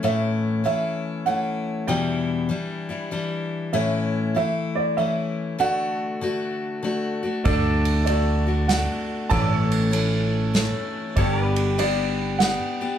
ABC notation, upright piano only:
X:1
M:3/4
L:1/8
Q:"Swing" 1/4=97
K:D
V:1 name="Upright piano"
e2 e2 f2 | g2 z4 | e2 e d e2 | f4 z2 |
d2 d2 f2 | a2 z4 | d2 d2 f2 |]